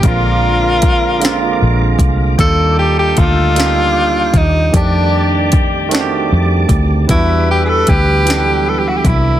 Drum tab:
HH |x-xx-x|x-xx-x|x-xx-x|x-xx-x|
SD |---o--|---o--|---o--|---o--|
BD |o-o--o|o-o--o|o-o--o|o-o--o|